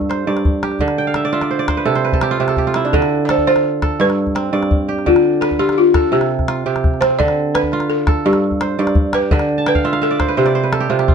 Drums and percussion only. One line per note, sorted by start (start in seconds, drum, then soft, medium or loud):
0.01 calabash thump soft
0.11 calabash click medium
0.37 calabash click soft
0.45 calabash thump medium
0.63 calabash click medium
0.71 calabash click soft
0.79 calabash thump soft
0.88 calabash click soft
1.14 calabash click medium
1.33 calabash click soft
1.41 calabash click soft
1.51 calabash click soft
1.68 calabash thump medium
1.68 calabash click medium
1.96 calabash click soft
2.13 calabash thump medium
2.21 calabash click medium
2.48 calabash click soft
2.57 calabash thump medium
2.74 calabash click medium
2.84 calabash click soft
2.93 calabash thump medium
3.02 calabash click soft
3.29 calabash click medium
3.38 calabash thump soft
3.47 calabash click soft
3.56 calabash click soft
3.64 calabash click soft
3.82 calabash thump medium
3.82 calabash click medium
4.10 calabash click soft
4.27 calabash thump soft
4.36 calabash click medium
4.63 calabash click soft
4.71 calabash thump medium
4.99 calabash click soft
5.07 calabash thump medium
5.16 calabash click soft
5.25 calabash click soft
5.42 calabash click medium
5.51 calabash thump soft
5.51 calabash click soft
5.69 calabash click soft
5.94 calabash thump medium
5.94 calabash click medium
6.21 calabash click soft
6.31 calabash click soft
6.39 calabash thump medium
6.39 calabash click soft
6.48 calabash click medium
6.76 calabash click soft
6.84 calabash thump medium
6.84 calabash click soft
6.94 calabash click soft
7.02 calabash click medium
7.11 calabash click soft
7.20 calabash thump medium
7.28 calabash click soft
7.55 calabash click medium
7.63 calabash thump medium
7.72 calabash click soft
7.80 calabash click medium
7.89 calabash click soft
8.07 calabash thump medium
8.07 calabash click medium
8.33 calabash click soft
8.51 calabash thump medium
8.61 calabash click medium
8.87 calabash click soft
8.95 calabash thump medium
9.13 calabash click medium
9.23 calabash click soft
9.31 calabash thump medium
9.39 calabash click medium
9.66 calabash click medium
9.75 calabash thump soft
9.84 calabash click soft
9.93 calabash click soft
10.03 calabash click soft
10.20 calabash thump medium
10.20 calabash click medium
10.46 calabash click soft
10.73 calabash click medium
10.99 calabash click soft
11.08 calabash thump medium